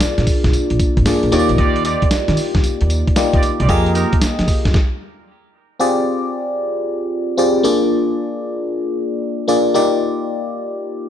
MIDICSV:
0, 0, Header, 1, 6, 480
1, 0, Start_track
1, 0, Tempo, 526316
1, 1446, Time_signature, 4, 2, 24, 8
1, 10114, End_track
2, 0, Start_track
2, 0, Title_t, "Horn section"
2, 0, Program_c, 0, 61
2, 1202, Note_on_c, 0, 63, 81
2, 1203, Note_on_c, 0, 65, 67
2, 1206, Note_on_c, 0, 67, 69
2, 1207, Note_on_c, 0, 74, 88
2, 1402, Note_off_c, 0, 63, 0
2, 1403, Note_off_c, 0, 65, 0
2, 1404, Note_off_c, 0, 67, 0
2, 1405, Note_off_c, 0, 74, 0
2, 1442, Note_on_c, 0, 63, 98
2, 1444, Note_on_c, 0, 65, 86
2, 1446, Note_on_c, 0, 67, 90
2, 1448, Note_on_c, 0, 74, 98
2, 1643, Note_off_c, 0, 63, 0
2, 1643, Note_off_c, 0, 65, 0
2, 1645, Note_off_c, 0, 67, 0
2, 1645, Note_off_c, 0, 74, 0
2, 1683, Note_on_c, 0, 63, 77
2, 1685, Note_on_c, 0, 65, 68
2, 1687, Note_on_c, 0, 67, 70
2, 1688, Note_on_c, 0, 74, 84
2, 1883, Note_off_c, 0, 63, 0
2, 1884, Note_off_c, 0, 65, 0
2, 1885, Note_off_c, 0, 67, 0
2, 1886, Note_off_c, 0, 74, 0
2, 3042, Note_on_c, 0, 63, 76
2, 3043, Note_on_c, 0, 65, 71
2, 3045, Note_on_c, 0, 67, 71
2, 3047, Note_on_c, 0, 74, 84
2, 3202, Note_off_c, 0, 63, 0
2, 3203, Note_off_c, 0, 65, 0
2, 3204, Note_off_c, 0, 67, 0
2, 3205, Note_off_c, 0, 74, 0
2, 3282, Note_on_c, 0, 63, 83
2, 3283, Note_on_c, 0, 65, 76
2, 3284, Note_on_c, 0, 67, 75
2, 3286, Note_on_c, 0, 74, 88
2, 3352, Note_off_c, 0, 63, 0
2, 3353, Note_off_c, 0, 67, 0
2, 3363, Note_on_c, 0, 63, 97
2, 3364, Note_on_c, 0, 67, 85
2, 3366, Note_on_c, 0, 68, 93
2, 3368, Note_on_c, 0, 70, 113
2, 3443, Note_off_c, 0, 65, 0
2, 3445, Note_off_c, 0, 74, 0
2, 3563, Note_off_c, 0, 63, 0
2, 3563, Note_off_c, 0, 67, 0
2, 3564, Note_off_c, 0, 68, 0
2, 3566, Note_off_c, 0, 70, 0
2, 3602, Note_on_c, 0, 63, 78
2, 3603, Note_on_c, 0, 67, 74
2, 3605, Note_on_c, 0, 68, 69
2, 3607, Note_on_c, 0, 70, 83
2, 3802, Note_off_c, 0, 63, 0
2, 3803, Note_off_c, 0, 67, 0
2, 3804, Note_off_c, 0, 68, 0
2, 3805, Note_off_c, 0, 70, 0
2, 10114, End_track
3, 0, Start_track
3, 0, Title_t, "FM electric piano"
3, 0, Program_c, 1, 5
3, 0, Control_c, 1, 64, 127
3, 0, Note_on_c, 1, 58, 87
3, 0, Note_on_c, 1, 62, 85
3, 0, Note_on_c, 1, 65, 87
3, 0, Note_on_c, 1, 68, 87
3, 0, Note_on_c, 1, 74, 99
3, 962, Note_off_c, 1, 58, 0
3, 962, Note_on_c, 1, 58, 78
3, 965, Note_off_c, 1, 62, 0
3, 965, Note_on_c, 1, 62, 81
3, 968, Note_off_c, 1, 65, 0
3, 968, Note_on_c, 1, 65, 72
3, 970, Note_off_c, 1, 68, 0
3, 970, Note_on_c, 1, 68, 78
3, 973, Note_off_c, 1, 74, 0
3, 973, Note_on_c, 1, 74, 99
3, 1191, Note_off_c, 1, 58, 0
3, 1196, Note_off_c, 1, 65, 0
3, 1202, Note_on_c, 1, 58, 88
3, 1205, Note_off_c, 1, 62, 0
3, 1205, Note_on_c, 1, 63, 83
3, 1207, Note_on_c, 1, 65, 80
3, 1208, Note_off_c, 1, 68, 0
3, 1210, Note_off_c, 1, 74, 0
3, 1210, Note_on_c, 1, 67, 83
3, 1213, Note_on_c, 1, 73, 85
3, 1218, Control_c, 1, 64, 0
3, 1270, Note_on_c, 1, 74, 99
3, 1286, Note_off_c, 1, 73, 0
3, 1374, Control_c, 1, 64, 127
3, 1987, Note_off_c, 1, 58, 0
3, 1989, Note_off_c, 1, 63, 0
3, 1990, Note_off_c, 1, 65, 0
3, 1992, Note_off_c, 1, 67, 0
3, 2022, Note_off_c, 1, 74, 0
3, 2882, Note_on_c, 1, 58, 79
3, 2885, Note_on_c, 1, 63, 78
3, 2887, Note_on_c, 1, 65, 78
3, 2891, Note_on_c, 1, 67, 75
3, 2893, Note_on_c, 1, 74, 92
3, 3286, Note_off_c, 1, 58, 0
3, 3288, Note_off_c, 1, 63, 0
3, 3289, Note_off_c, 1, 65, 0
3, 3291, Note_off_c, 1, 67, 0
3, 3292, Note_off_c, 1, 74, 0
3, 3362, Note_on_c, 1, 58, 95
3, 3367, Note_on_c, 1, 65, 86
3, 3368, Note_on_c, 1, 67, 88
3, 3371, Note_on_c, 1, 68, 84
3, 3374, Note_on_c, 1, 75, 105
3, 3379, Control_c, 1, 64, 0
3, 3526, Control_c, 1, 64, 127
3, 4100, Note_off_c, 1, 58, 0
3, 4102, Note_off_c, 1, 65, 0
3, 4103, Note_off_c, 1, 67, 0
3, 4104, Note_off_c, 1, 68, 0
3, 4105, Note_off_c, 1, 75, 0
3, 4336, Control_c, 1, 64, 0
3, 5285, Note_on_c, 1, 60, 88
3, 5288, Note_on_c, 1, 65, 85
3, 5290, Note_on_c, 1, 67, 80
3, 5294, Note_on_c, 1, 68, 82
3, 5296, Note_on_c, 1, 74, 104
3, 5439, Control_c, 1, 64, 127
3, 6021, Note_off_c, 1, 60, 0
3, 6022, Note_off_c, 1, 65, 0
3, 6023, Note_off_c, 1, 67, 0
3, 6025, Note_off_c, 1, 68, 0
3, 6027, Note_off_c, 1, 74, 0
3, 6725, Note_on_c, 1, 60, 83
3, 6728, Note_on_c, 1, 65, 81
3, 6730, Note_on_c, 1, 67, 81
3, 6733, Note_on_c, 1, 68, 75
3, 6736, Note_on_c, 1, 74, 93
3, 6959, Note_off_c, 1, 65, 0
3, 6961, Note_off_c, 1, 68, 0
3, 6962, Note_on_c, 1, 58, 100
3, 6964, Note_off_c, 1, 74, 0
3, 6965, Note_off_c, 1, 60, 0
3, 6966, Note_on_c, 1, 62, 85
3, 6968, Note_off_c, 1, 67, 0
3, 6970, Note_on_c, 1, 65, 86
3, 6972, Note_on_c, 1, 68, 83
3, 6975, Note_on_c, 1, 74, 95
3, 6977, Control_c, 1, 64, 0
3, 7119, Control_c, 1, 64, 127
3, 7748, Note_off_c, 1, 58, 0
3, 7750, Note_off_c, 1, 62, 0
3, 7751, Note_off_c, 1, 65, 0
3, 7753, Note_off_c, 1, 68, 0
3, 7754, Note_off_c, 1, 74, 0
3, 8643, Note_on_c, 1, 58, 86
3, 8646, Note_on_c, 1, 62, 74
3, 8648, Note_on_c, 1, 65, 81
3, 8652, Note_on_c, 1, 68, 84
3, 8653, Note_on_c, 1, 74, 97
3, 8874, Note_off_c, 1, 58, 0
3, 8879, Note_off_c, 1, 65, 0
3, 8885, Note_on_c, 1, 58, 94
3, 8886, Note_off_c, 1, 62, 0
3, 8886, Note_off_c, 1, 74, 0
3, 8887, Note_on_c, 1, 63, 88
3, 8889, Note_off_c, 1, 68, 0
3, 8890, Note_on_c, 1, 65, 88
3, 8893, Note_on_c, 1, 67, 83
3, 8896, Control_c, 1, 64, 0
3, 8897, Note_on_c, 1, 74, 100
3, 9071, Control_c, 1, 64, 127
3, 9669, Note_off_c, 1, 58, 0
3, 9670, Note_off_c, 1, 63, 0
3, 9671, Note_off_c, 1, 65, 0
3, 9673, Note_off_c, 1, 67, 0
3, 9675, Note_off_c, 1, 74, 0
3, 10114, End_track
4, 0, Start_track
4, 0, Title_t, "Upright bass"
4, 0, Program_c, 2, 32
4, 165, Note_on_c, 2, 46, 94
4, 229, Note_off_c, 2, 46, 0
4, 404, Note_on_c, 2, 34, 90
4, 468, Note_off_c, 2, 34, 0
4, 644, Note_on_c, 2, 34, 87
4, 708, Note_off_c, 2, 34, 0
4, 885, Note_on_c, 2, 32, 96
4, 949, Note_off_c, 2, 32, 0
4, 1123, Note_on_c, 2, 34, 88
4, 1188, Note_off_c, 2, 34, 0
4, 1205, Note_on_c, 2, 39, 98
4, 1331, Note_off_c, 2, 39, 0
4, 1364, Note_on_c, 2, 34, 93
4, 1429, Note_off_c, 2, 34, 0
4, 1443, Note_on_c, 2, 39, 100
4, 1760, Note_off_c, 2, 39, 0
4, 2083, Note_on_c, 2, 51, 103
4, 2148, Note_off_c, 2, 51, 0
4, 2324, Note_on_c, 2, 39, 95
4, 2388, Note_off_c, 2, 39, 0
4, 2565, Note_on_c, 2, 39, 94
4, 2755, Note_off_c, 2, 39, 0
4, 3042, Note_on_c, 2, 38, 89
4, 3107, Note_off_c, 2, 38, 0
4, 3284, Note_on_c, 2, 36, 100
4, 3348, Note_off_c, 2, 36, 0
4, 3363, Note_on_c, 2, 41, 109
4, 3680, Note_off_c, 2, 41, 0
4, 4004, Note_on_c, 2, 53, 87
4, 4069, Note_off_c, 2, 53, 0
4, 4244, Note_on_c, 2, 41, 88
4, 4308, Note_off_c, 2, 41, 0
4, 10114, End_track
5, 0, Start_track
5, 0, Title_t, "Muted upright bass strokes"
5, 7, Note_on_c, 9, 29, 52
5, 98, Note_off_c, 9, 29, 0
5, 485, Note_on_c, 9, 29, 51
5, 577, Note_off_c, 9, 29, 0
5, 1926, Note_on_c, 9, 29, 55
5, 2018, Note_off_c, 9, 29, 0
5, 2406, Note_on_c, 9, 29, 50
5, 2497, Note_off_c, 9, 29, 0
5, 2887, Note_on_c, 9, 29, 53
5, 2978, Note_off_c, 9, 29, 0
5, 3846, Note_on_c, 9, 29, 55
5, 3937, Note_off_c, 9, 29, 0
5, 10114, End_track
6, 0, Start_track
6, 0, Title_t, "Drums"
6, 5, Note_on_c, 9, 38, 120
6, 5, Note_on_c, 9, 42, 82
6, 6, Note_on_c, 9, 54, 91
6, 96, Note_off_c, 9, 38, 0
6, 96, Note_off_c, 9, 42, 0
6, 97, Note_off_c, 9, 54, 0
6, 163, Note_on_c, 9, 38, 65
6, 165, Note_on_c, 9, 42, 56
6, 244, Note_on_c, 9, 54, 66
6, 245, Note_on_c, 9, 36, 95
6, 245, Note_on_c, 9, 46, 75
6, 254, Note_off_c, 9, 38, 0
6, 256, Note_off_c, 9, 42, 0
6, 336, Note_off_c, 9, 36, 0
6, 336, Note_off_c, 9, 46, 0
6, 336, Note_off_c, 9, 54, 0
6, 404, Note_on_c, 9, 36, 90
6, 404, Note_on_c, 9, 42, 54
6, 405, Note_on_c, 9, 38, 70
6, 486, Note_off_c, 9, 42, 0
6, 486, Note_on_c, 9, 42, 73
6, 487, Note_on_c, 9, 54, 69
6, 495, Note_off_c, 9, 36, 0
6, 496, Note_off_c, 9, 38, 0
6, 577, Note_off_c, 9, 42, 0
6, 578, Note_off_c, 9, 54, 0
6, 641, Note_on_c, 9, 42, 57
6, 726, Note_off_c, 9, 42, 0
6, 726, Note_on_c, 9, 36, 93
6, 726, Note_on_c, 9, 42, 82
6, 726, Note_on_c, 9, 54, 71
6, 817, Note_off_c, 9, 36, 0
6, 817, Note_off_c, 9, 42, 0
6, 817, Note_off_c, 9, 54, 0
6, 884, Note_on_c, 9, 42, 49
6, 885, Note_on_c, 9, 36, 89
6, 963, Note_off_c, 9, 42, 0
6, 963, Note_on_c, 9, 42, 87
6, 964, Note_on_c, 9, 54, 95
6, 965, Note_on_c, 9, 38, 111
6, 976, Note_off_c, 9, 36, 0
6, 1054, Note_off_c, 9, 42, 0
6, 1055, Note_off_c, 9, 54, 0
6, 1056, Note_off_c, 9, 38, 0
6, 1122, Note_on_c, 9, 42, 60
6, 1205, Note_off_c, 9, 42, 0
6, 1205, Note_on_c, 9, 42, 76
6, 1205, Note_on_c, 9, 54, 69
6, 1296, Note_off_c, 9, 42, 0
6, 1296, Note_off_c, 9, 54, 0
6, 1361, Note_on_c, 9, 42, 62
6, 1444, Note_off_c, 9, 42, 0
6, 1444, Note_on_c, 9, 36, 123
6, 1444, Note_on_c, 9, 42, 68
6, 1535, Note_off_c, 9, 36, 0
6, 1535, Note_off_c, 9, 42, 0
6, 1604, Note_on_c, 9, 42, 56
6, 1684, Note_on_c, 9, 54, 78
6, 1686, Note_off_c, 9, 42, 0
6, 1686, Note_on_c, 9, 42, 90
6, 1775, Note_off_c, 9, 54, 0
6, 1777, Note_off_c, 9, 42, 0
6, 1842, Note_on_c, 9, 42, 53
6, 1846, Note_on_c, 9, 36, 108
6, 1923, Note_on_c, 9, 38, 117
6, 1924, Note_off_c, 9, 42, 0
6, 1924, Note_on_c, 9, 42, 85
6, 1924, Note_on_c, 9, 54, 87
6, 1937, Note_off_c, 9, 36, 0
6, 2015, Note_off_c, 9, 38, 0
6, 2015, Note_off_c, 9, 42, 0
6, 2016, Note_off_c, 9, 54, 0
6, 2081, Note_on_c, 9, 38, 68
6, 2083, Note_on_c, 9, 42, 57
6, 2162, Note_on_c, 9, 46, 74
6, 2162, Note_on_c, 9, 54, 72
6, 2172, Note_off_c, 9, 38, 0
6, 2174, Note_off_c, 9, 42, 0
6, 2253, Note_off_c, 9, 46, 0
6, 2253, Note_off_c, 9, 54, 0
6, 2322, Note_on_c, 9, 42, 54
6, 2323, Note_on_c, 9, 36, 98
6, 2323, Note_on_c, 9, 38, 75
6, 2405, Note_off_c, 9, 42, 0
6, 2405, Note_on_c, 9, 42, 74
6, 2405, Note_on_c, 9, 54, 77
6, 2414, Note_off_c, 9, 38, 0
6, 2415, Note_off_c, 9, 36, 0
6, 2496, Note_off_c, 9, 42, 0
6, 2496, Note_off_c, 9, 54, 0
6, 2560, Note_on_c, 9, 42, 57
6, 2644, Note_off_c, 9, 42, 0
6, 2644, Note_on_c, 9, 42, 73
6, 2644, Note_on_c, 9, 54, 77
6, 2735, Note_off_c, 9, 42, 0
6, 2736, Note_off_c, 9, 54, 0
6, 2804, Note_on_c, 9, 36, 88
6, 2804, Note_on_c, 9, 42, 50
6, 2882, Note_off_c, 9, 42, 0
6, 2882, Note_on_c, 9, 42, 79
6, 2883, Note_on_c, 9, 54, 101
6, 2884, Note_on_c, 9, 38, 107
6, 2896, Note_off_c, 9, 36, 0
6, 2973, Note_off_c, 9, 42, 0
6, 2974, Note_off_c, 9, 54, 0
6, 2975, Note_off_c, 9, 38, 0
6, 3041, Note_on_c, 9, 36, 106
6, 3042, Note_on_c, 9, 42, 62
6, 3125, Note_off_c, 9, 42, 0
6, 3125, Note_on_c, 9, 42, 77
6, 3125, Note_on_c, 9, 54, 69
6, 3133, Note_off_c, 9, 36, 0
6, 3216, Note_off_c, 9, 42, 0
6, 3216, Note_off_c, 9, 54, 0
6, 3282, Note_on_c, 9, 42, 61
6, 3363, Note_off_c, 9, 42, 0
6, 3363, Note_on_c, 9, 42, 68
6, 3364, Note_on_c, 9, 36, 125
6, 3454, Note_off_c, 9, 42, 0
6, 3455, Note_off_c, 9, 36, 0
6, 3523, Note_on_c, 9, 42, 56
6, 3603, Note_on_c, 9, 54, 68
6, 3605, Note_off_c, 9, 42, 0
6, 3605, Note_on_c, 9, 42, 82
6, 3694, Note_off_c, 9, 54, 0
6, 3696, Note_off_c, 9, 42, 0
6, 3763, Note_on_c, 9, 42, 61
6, 3766, Note_on_c, 9, 36, 108
6, 3844, Note_on_c, 9, 38, 108
6, 3845, Note_off_c, 9, 42, 0
6, 3845, Note_on_c, 9, 42, 89
6, 3845, Note_on_c, 9, 54, 94
6, 3857, Note_off_c, 9, 36, 0
6, 3936, Note_off_c, 9, 38, 0
6, 3936, Note_off_c, 9, 42, 0
6, 3937, Note_off_c, 9, 54, 0
6, 4002, Note_on_c, 9, 38, 64
6, 4004, Note_on_c, 9, 42, 56
6, 4083, Note_on_c, 9, 46, 78
6, 4083, Note_on_c, 9, 54, 71
6, 4084, Note_on_c, 9, 36, 88
6, 4093, Note_off_c, 9, 38, 0
6, 4095, Note_off_c, 9, 42, 0
6, 4174, Note_off_c, 9, 54, 0
6, 4175, Note_off_c, 9, 36, 0
6, 4175, Note_off_c, 9, 46, 0
6, 4244, Note_on_c, 9, 36, 100
6, 4244, Note_on_c, 9, 42, 58
6, 4245, Note_on_c, 9, 38, 72
6, 4325, Note_off_c, 9, 36, 0
6, 4325, Note_off_c, 9, 38, 0
6, 4325, Note_on_c, 9, 36, 109
6, 4325, Note_on_c, 9, 38, 88
6, 4335, Note_off_c, 9, 42, 0
6, 4416, Note_off_c, 9, 36, 0
6, 4416, Note_off_c, 9, 38, 0
6, 10114, End_track
0, 0, End_of_file